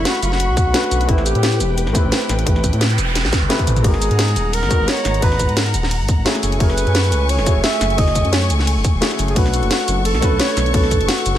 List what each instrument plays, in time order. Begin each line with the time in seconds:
Already playing: grand piano A3 C#4 D4 F#4 B4 C#5, string section B5 C#6
0.05 alto saxophone F#4, snare, closed hi-hat
0.15 closed hi-hat
0.22 detuned saw bass F#1, alto saxophone F#4, closed hi-hat, shaker
0.32 snare
0.40 closed hi-hat, shaker
0.49 detuned saw bass B1
0.57 kick, closed hi-hat, shaker
0.66 detuned saw bass B1
0.73 grand piano A3 C#4 D4 F#4 B4, snare, closed hi-hat
0.83 snare, closed hi-hat
0.91 detuned saw bass B1, closed hi-hat, shaker
1.01 closed hi-hat
1.07 detuned saw bass A1, grand piano A3 C4 E4 G4 B4, alto saxophone E4, string section B4 G5, kick, closed hi-hat
1.18 snare
1.26 alto saxophone G4, closed hi-hat, shaker
1.35 detuned saw bass A2, closed hi-hat
1.43 snare, closed hi-hat
1.52 closed hi-hat
1.60 detuned saw bass E1, closed hi-hat, shaker
1.78 closed hi-hat, shaker
1.87 detuned saw bass A1, snare
1.93 grand piano A3 C4 E4 G4 B4, kick, closed hi-hat, shaker
2.04 detuned saw bass A1
2.12 snare, closed hi-hat
2.21 closed hi-hat
2.29 detuned saw bass A1, snare, closed hi-hat, shaker
2.39 closed hi-hat
2.44 detuned saw bass A1, grand piano A3 C4 E4 G4 B4, kick, closed hi-hat, noise sweep
2.56 snare
2.64 kick, closed hi-hat, shaker
2.73 detuned saw bass A2, closed hi-hat
2.81 snare, closed hi-hat
2.90 closed hi-hat
2.98 detuned saw bass E1, closed hi-hat, shaker
3.15 snare, closed hi-hat, shaker
3.25 detuned saw bass A1, snare
3.33 kick, snare, closed hi-hat, shaker
3.42 detuned saw bass G1, mid tom
3.49 grand piano A3 C4 E4 G4 B4, snare, closed hi-hat
3.59 kick, closed hi-hat
3.67 detuned saw bass A1, closed hi-hat, mid tom, shaker
3.76 closed hi-hat, mid tom, shaker
3.82 detuned saw bass G#1, grand piano G#3 B3 D#4 F#4 A#4, alto saxophone G#4, string section F#5 A#5, kick, closed hi-hat, ride
3.94 snare
4.02 closed hi-hat, ride, shaker
4.11 detuned saw bass G#2, closed hi-hat
4.19 snare, closed hi-hat, ride
4.28 closed hi-hat
4.36 detuned saw bass D#1, closed hi-hat, ride, shaker
4.53 alto saxophone A#4, closed hi-hat, ride, shaker
4.63 detuned saw bass G#1, snare
4.69 grand piano G#3 B3 D#4 F#4 A#4, kick, closed hi-hat, ride, shaker
4.80 detuned saw bass G#1
4.88 alto saxophone C#5, snare, closed hi-hat, ride
4.97 closed hi-hat
5.05 detuned saw bass G#1, snare, closed hi-hat, ride, shaker
5.14 closed hi-hat
5.20 detuned saw bass G#1, grand piano G#3 B3 D#4 F#4 A#5, alto saxophone B4, kick, closed hi-hat, ride
5.32 snare
5.40 kick, closed hi-hat, ride, shaker
5.49 detuned saw bass G#2, closed hi-hat
5.57 alto saxophone A#4, snare, closed hi-hat, ride
5.66 closed hi-hat
5.74 detuned saw bass D#1, closed hi-hat, ride, shaker
5.83 snare
5.91 closed hi-hat, ride, shaker
6.01 detuned saw bass G#1
6.08 kick, closed hi-hat, ride, shaker
6.18 detuned saw bass G#1
6.25 grand piano A3 C#4 E4 F#4 G#4, snare, closed hi-hat, ride
6.35 snare, closed hi-hat
6.43 detuned saw bass F#1, string section A3 G#5 C#6, closed hi-hat, ride, shaker
6.52 closed hi-hat
6.58 detuned saw bass F#1, grand piano A3 C#4 E4 F#4 G#4, alto saxophone B4, kick, closed hi-hat, ride
6.70 snare
6.78 closed hi-hat, ride, shaker
6.87 detuned saw bass F#2, closed hi-hat
6.95 snare, closed hi-hat, ride
7.04 closed hi-hat
7.12 detuned saw bass C#2, closed hi-hat, ride, shaker
7.29 alto saxophone C#5, closed hi-hat, ride, shaker
7.38 detuned saw bass F#1, snare
7.44 grand piano A3 C#4 E4 F#4 G#4, kick, closed hi-hat, ride, shaker
7.56 detuned saw bass F#1
7.64 alto saxophone E5, snare, closed hi-hat, ride
7.73 closed hi-hat
7.81 detuned saw bass F#1, snare, closed hi-hat, ride, shaker
7.90 closed hi-hat
7.96 detuned saw bass F#1, grand piano A3 C#4 E4 F#4 G#4, alto saxophone D#5, kick, closed hi-hat, ride
8.08 snare
8.15 kick, closed hi-hat, ride, shaker
8.25 detuned saw bass F#2, closed hi-hat
8.33 alto saxophone C#5, snare, closed hi-hat, ride
8.42 closed hi-hat
8.50 detuned saw bass C#2, closed hi-hat, ride, shaker
8.59 snare
8.67 closed hi-hat, ride, shaker
8.76 detuned saw bass F#1
8.85 kick, closed hi-hat, ride, shaker
8.94 detuned saw bass E1
9.01 grand piano A3 C#4 E4 F#4 G#4, snare, closed hi-hat, ride
9.11 snare, closed hi-hat
9.19 detuned saw bass F#1, closed hi-hat, ride, shaker
9.28 alto saxophone G#4, closed hi-hat
9.34 detuned saw bass B1, grand piano A3 C#4 D4 F#4 B4, alto saxophone F#4, string section A4 C#6, kick, closed hi-hat, ride
9.46 snare
9.54 closed hi-hat, ride, shaker
9.63 detuned saw bass F#1, closed hi-hat
9.71 snare, closed hi-hat, ride
9.80 closed hi-hat
9.88 detuned saw bass F#1, closed hi-hat, ride, shaker
10.05 alto saxophone A4, closed hi-hat, ride, shaker
10.14 detuned saw bass B1, snare
10.20 grand piano A3 C#4 D4 F#4 B4, kick, closed hi-hat, ride, shaker
10.32 detuned saw bass B1
10.39 alto saxophone C#5, snare, closed hi-hat, ride
10.49 closed hi-hat
10.57 detuned saw bass B1, snare, closed hi-hat, ride, shaker
10.66 closed hi-hat
10.72 detuned saw bass B1, grand piano A3 C#4 D4 F#4 B4, alto saxophone A4, kick, closed hi-hat, ride
10.83 snare
10.91 kick, closed hi-hat, ride, shaker
11.01 detuned saw bass F#1, closed hi-hat
11.08 alto saxophone F#4, snare, closed hi-hat, ride
11.18 closed hi-hat
11.26 detuned saw bass F#1, closed hi-hat, ride, shaker
11.35 snare